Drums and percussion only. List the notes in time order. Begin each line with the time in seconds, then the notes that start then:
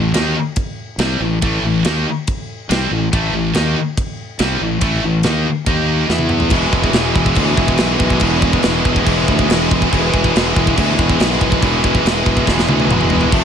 0.14 snare, ride bell
0.56 kick, ride bell
0.99 snare, ride bell
1.42 kick, ride bell
1.85 snare, ride bell
2.27 kick, ride bell
2.71 snare, ride bell
3.13 kick, ride bell
3.54 snare, ride bell
3.97 kick, ride bell
4.39 snare, ride bell
4.81 kick, ride bell
5.23 snare, ride bell
5.66 kick, ride bell
6.10 snare
6.18 high tom
6.29 mid tom
6.40 floor tom
6.50 kick, crash
6.73 kick
6.84 kick
6.93 snare, crash
7.16 kick
7.26 kick
7.35 kick, crash
7.57 kick
7.68 kick
7.77 snare, crash
8.00 kick
8.10 kick
8.20 kick, crash
8.42 kick
8.53 kick
8.63 snare, crash
8.85 kick
8.96 kick
9.06 kick, crash
9.28 kick
9.39 kick
9.50 snare, crash
9.71 kick
9.82 kick
9.93 kick, crash
10.14 kick
10.24 kick
10.36 snare, crash
10.56 kick
10.67 kick
10.78 kick, crash
10.99 kick
11.09 kick
11.20 snare, crash
11.41 kick
11.52 kick
11.62 kick, crash
11.84 kick
11.95 kick
12.06 snare, crash
12.26 kick
12.37 kick
12.47 kick, snare
12.59 snare
12.68 high tom
12.80 high tom
12.91 mid tom
13.01 mid tom
13.10 floor tom
13.21 floor tom
13.32 kick, crash